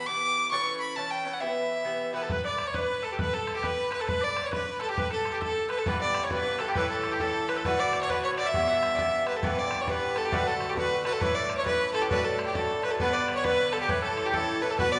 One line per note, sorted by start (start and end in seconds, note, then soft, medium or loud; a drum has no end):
0.06 0.51 E3 soft
0.06 0.52 B3 medium
0.06 0.52 G4 medium
0.06 0.53 B4 medium
0.06 0.50 D6 medium
0.51 0.96 E3 medium
0.51 0.97 C#4 medium
0.51 0.97 A4 medium
0.51 0.98 B4 medium
0.51 0.77 C#6 medium
0.80 0.98 B5 medium
0.96 1.23 E3 medium
0.96 1.24 C#4 medium
0.96 1.24 A4 medium
0.96 1.25 B4 medium
0.96 1.12 A5 medium
1.11 1.35 G5 medium
1.24 1.39 E3 soft
1.24 1.40 C#4 medium
1.24 1.41 A4 medium
1.24 1.41 B4 medium
1.33 1.42 F#5 medium
1.40 1.83 E3 medium
1.40 1.85 B3 medium
1.40 1.85 G4 medium
1.40 1.87 B4 medium
1.40 2.14 E5 medium
1.85 2.12 E3 medium
1.85 2.13 B3 medium
1.85 2.14 G4 medium
1.85 2.14 B4 medium
2.13 2.30 E3 medium
2.13 2.30 B3 medium
2.13 2.31 G4 medium
2.13 2.21 B4 medium
2.13 2.22 B4 medium
2.13 2.24 B4 medium
2.13 2.31 B4 medium
2.22 2.30 A4 medium
2.22 2.33 A4 medium
2.30 2.45 B4 medium
2.30 2.43 B4 medium
2.30 2.45 B4 medium
2.30 bodhran medium
2.45 2.65 D5 medium
2.45 2.69 D5 medium
2.58 bodhran medium
2.66 2.73 C#5 medium
2.66 2.75 C#5 medium
2.66 2.77 C#5 medium
2.74 3.00 B4 medium
2.74 3.04 B4 medium
2.74 3.05 B4 medium
2.74 bodhran medium
3.02 3.18 A4 medium
3.02 3.11 A4 medium
3.02 3.14 A4 medium
3.11 3.19 G4 medium
3.11 3.20 G4 medium
3.19 3.32 B4 medium
3.19 3.34 B4 medium
3.19 3.36 B4 loud
3.19 bodhran medium
3.33 3.56 A4 medium
3.33 3.65 A4 medium
3.33 3.56 A4 medium
3.47 bodhran medium
3.55 3.64 G4 medium
3.55 3.66 G4 medium
3.62 3.89 B4 medium
3.62 3.90 B4 medium
3.62 3.92 B4 medium
3.62 bodhran medium
3.91 3.99 B4 medium
3.91 4.02 B4 medium
3.91 bodhran medium
4.00 4.06 A4 medium
4.00 4.09 A4 medium
4.00 4.10 A4 medium
4.07 4.20 B4 medium
4.07 4.25 B4 loud
4.07 4.23 B4 medium
4.07 bodhran medium
4.21 4.42 D5 medium
4.21 4.32 D5 medium
4.21 4.47 D5 medium
4.37 bodhran medium
4.43 4.51 C#5 medium
4.43 4.52 C#5 medium
4.43 4.53 C#5 medium
4.51 4.79 B4 medium
4.51 bodhran medium
4.79 4.88 A4 medium
4.79 4.89 A4 medium
4.79 bodhran medium
4.88 4.96 G4 medium
4.88 4.97 G4 medium
4.88 5.00 G4 medium
4.97 5.10 B4 medium
4.97 5.12 B4 medium
4.97 5.12 B4 loud
4.97 bodhran medium
5.10 5.32 A4 medium
5.10 5.35 A4 medium
5.10 5.36 A4 medium
5.25 bodhran medium
5.32 5.40 G4 medium
5.32 5.42 G4 medium
5.41 5.68 A4 medium
5.41 5.69 A4 medium
5.41 5.71 A4 medium
5.41 bodhran medium
5.69 5.77 B4 medium
5.69 5.79 B4 medium
5.69 5.80 B4 medium
5.69 bodhran medium
5.77 5.85 A4 medium
5.77 5.87 A4 medium
5.77 5.89 A4 medium
5.86 6.30 G2 medium
5.86 6.31 E3 medium
5.86 6.31 B3 medium
5.86 6.32 G4 medium
5.86 6.20 B4 medium
5.86 6.01 B4 loud
5.86 6.01 B4 medium
5.86 bodhran medium
6.01 6.24 D5 medium
6.01 6.25 D5 medium
6.14 bodhran medium
6.23 6.31 C#5 medium
6.30 6.58 G2 medium
6.30 6.59 E3 medium
6.30 6.60 B3 medium
6.30 6.60 G4 medium
6.30 6.58 B4 medium
6.30 6.60 B4 medium
6.30 6.62 B4 medium
6.30 bodhran medium
6.59 6.76 G2 medium
6.59 6.75 E3 medium
6.59 6.76 B3 medium
6.59 6.77 G4 medium
6.59 6.67 A4 medium
6.59 6.70 A4 medium
6.59 bodhran medium
6.68 6.75 G4 medium
6.68 6.76 G4 medium
6.75 7.19 A2 medium
6.75 7.20 E3 medium
6.75 7.21 C#4 medium
6.75 7.21 E4 medium
6.75 6.88 B4 medium
6.75 6.89 B4 loud
6.75 6.90 B4 medium
6.75 bodhran medium
6.88 7.10 A4 medium
6.88 7.18 A4 medium
6.88 7.14 A4 medium
7.03 bodhran medium
7.11 7.19 G4 medium
7.11 7.22 G4 medium
7.20 7.64 A2 medium
7.20 7.65 E3 medium
7.20 7.66 C#4 medium
7.20 7.66 E4 medium
7.20 7.47 A4 medium
7.20 7.50 A4 loud
7.20 7.47 A4 medium
7.20 bodhran medium
7.48 7.56 B4 medium
7.48 7.57 B4 medium
7.48 7.59 B4 medium
7.48 bodhran medium
7.56 7.64 A4 medium
7.56 7.66 A4 medium
7.65 8.09 A2 medium
7.65 8.09 D3 medium
7.65 8.10 A3 medium
7.65 8.10 F#4 medium
7.65 7.78 B4 medium
7.65 7.81 B4 loud
7.65 7.78 B4 medium
7.65 bodhran medium
7.79 8.00 D5 medium
7.79 8.01 D5 medium
7.93 bodhran medium
8.01 8.09 C#5 medium
8.01 8.11 C#5 medium
8.01 8.10 C#5 medium
8.09 8.36 A2 medium
8.09 8.38 D3 medium
8.09 8.38 A3 medium
8.09 8.39 F#4 medium
8.09 8.22 B4 medium
8.09 8.24 B4 medium
8.09 8.24 B4 loud
8.09 bodhran medium
8.23 8.37 C#5 medium
8.23 8.30 C#5 medium
8.37 8.53 A2 medium
8.37 8.54 D3 medium
8.37 8.54 A3 medium
8.37 8.55 F#4 medium
8.37 8.45 D5 medium
8.37 8.48 D5 medium
8.37 bodhran medium
8.45 8.67 E5 medium
8.45 8.66 E5 medium
8.45 8.70 E5 medium
8.53 8.97 G2 medium
8.53 8.97 E3 medium
8.53 8.98 B3 medium
8.53 8.99 G4 medium
8.53 bodhran medium
8.68 8.93 E5 medium
8.68 8.94 E5 medium
8.68 8.96 E5 medium
8.68 8.72 F#5 medium
8.83 bodhran medium
8.94 9.41 G2 medium
8.94 8.98 D5 medium
8.94 9.01 E5 medium
8.94 9.25 E5 medium
8.94 9.27 E5 medium
8.99 9.42 E3 medium
8.99 9.43 B3 medium
8.99 9.43 G4 medium
8.99 9.09 E5 medium
8.99 bodhran medium
9.10 9.26 E5 medium
9.27 9.35 B4 medium
9.27 9.38 B4 medium
9.27 bodhran medium
9.36 9.44 A4 medium
9.36 9.47 A4 medium
9.42 9.85 G2 medium
9.42 9.86 E3 medium
9.42 9.87 B3 medium
9.42 9.88 G4 medium
9.42 9.57 B4 medium
9.42 9.60 B4 medium
9.42 bodhran medium
9.58 9.89 D5 medium
9.58 9.83 D5 medium
9.71 bodhran medium
9.81 9.91 C#5 medium
9.86 10.31 G2 medium
9.86 10.32 E3 medium
9.86 10.32 B3 medium
9.86 10.33 G4 medium
9.86 10.14 B4 medium
9.86 10.19 B4 medium
9.86 bodhran medium
10.16 10.24 A4 medium
10.16 10.27 A4 medium
10.16 bodhran medium
10.24 10.33 G4 medium
10.24 10.35 G4 medium
10.32 10.74 A2 medium
10.32 10.76 D3 medium
10.32 10.77 A3 medium
10.32 10.77 F#4 medium
10.32 10.47 B4 medium
10.32 10.49 B4 medium
10.32 bodhran medium
10.46 10.70 A4 medium
10.46 10.71 A4 medium
10.60 bodhran medium
10.69 10.77 G4 medium
10.69 10.76 G4 medium
10.76 11.03 A2 medium
10.76 11.04 D3 medium
10.76 11.05 A3 medium
10.76 11.05 F#4 medium
10.76 11.03 B4 loud
10.76 11.03 B4 medium
10.76 bodhran medium
11.04 11.20 A2 medium
11.04 11.21 D3 medium
11.04 11.21 A3 medium
11.04 11.22 F#4 medium
11.04 11.13 B4 medium
11.04 11.14 B4 loud
11.04 bodhran medium
11.13 11.22 A4 medium
11.21 11.64 A2 medium
11.21 11.65 E3 medium
11.21 11.65 C#4 medium
11.21 11.66 E4 medium
11.21 11.36 B4 loud
11.21 11.36 B4 medium
11.21 bodhran medium
11.35 11.57 D5 medium
11.35 11.56 D5 medium
11.50 bodhran medium
11.58 11.66 C#5 medium
11.58 11.65 C#5 medium
11.65 12.09 A2 medium
11.65 12.10 E3 medium
11.65 12.11 C#4 medium
11.65 12.11 E4 medium
11.65 11.92 B4 medium
11.65 11.92 B4 loud
11.65 bodhran medium
11.94 12.02 A4 medium
11.94 12.03 A4 medium
11.94 bodhran medium
12.02 12.09 G4 medium
12.02 12.11 G4 medium
12.10 12.53 A2 medium
12.10 12.54 F#3 medium
12.10 12.55 A3 medium
12.10 12.56 D4 medium
12.10 12.26 B4 loud
12.10 12.25 B4 medium
12.10 bodhran medium
12.24 12.45 A4 medium
12.24 12.48 A4 medium
12.39 bodhran medium
12.46 12.57 G4 medium
12.46 12.55 G4 medium
12.55 12.99 A2 medium
12.55 13.00 F#3 medium
12.55 13.00 A3 medium
12.55 13.00 D4 medium
12.55 12.84 A4 medium
12.55 12.83 A4 medium
12.55 bodhran medium
12.83 12.92 B4 medium
12.83 12.93 B4 medium
12.83 bodhran medium
12.91 12.98 A4 medium
12.91 13.00 A4 medium
12.99 13.43 G2 medium
12.99 13.44 D3 medium
12.99 13.45 B3 medium
12.99 13.45 D4 medium
12.99 13.15 B4 loud
12.99 13.34 B4 medium
12.99 13.14 B4 medium
12.99 bodhran medium
13.13 13.35 D5 medium
13.28 bodhran medium
13.36 13.46 C#5 medium
13.36 13.45 C#5 medium
13.36 13.44 C#5 medium
13.44 13.88 G2 medium
13.44 13.89 D3 medium
13.44 13.89 B3 medium
13.44 13.90 D4 medium
13.44 13.70 B4 medium
13.44 13.74 B4 loud
13.44 13.68 B4 medium
13.44 bodhran medium
13.69 13.77 A4 medium
13.69 13.80 A4 loud
13.69 13.77 A4 medium
13.69 13.72 B4 medium
13.69 bodhran medium
13.79 13.89 G4 medium
13.79 13.91 G4 medium
13.79 13.89 G4 medium
13.79 13.81 A4 medium
13.88 14.32 A2 medium
13.88 14.33 E3 medium
13.88 14.34 C#4 medium
13.88 14.34 E4 medium
13.88 14.02 B4 medium
13.88 14.04 B4 medium
13.88 14.02 B4 loud
13.88 bodhran medium
14.02 14.26 A4 medium
14.02 14.27 A4 medium
14.02 14.24 A4 medium
14.17 bodhran medium
14.25 14.35 G4 medium
14.25 14.34 G4 medium
14.33 14.60 A2 medium
14.33 14.61 E3 medium
14.33 14.62 C#4 medium
14.33 14.63 E4 medium
14.33 14.63 A4 loud
14.33 14.69 A4 medium
14.33 14.60 A4 medium
14.33 bodhran medium
14.61 14.78 A2 medium
14.61 14.78 E3 medium
14.61 14.79 C#4 medium
14.61 14.79 E4 medium
14.61 14.72 B4 loud
14.61 14.70 B4 medium
14.70 14.79 A4 medium
14.70 14.78 A4 medium
14.78 14.99 B2 medium
14.78 14.99 D3 medium
14.78 14.99 B3 medium
14.78 14.99 F#4 medium
14.78 14.94 B4 loud
14.78 14.93 B4 medium
14.78 bodhran medium
14.92 14.99 D5 loud
14.92 14.99 D5 medium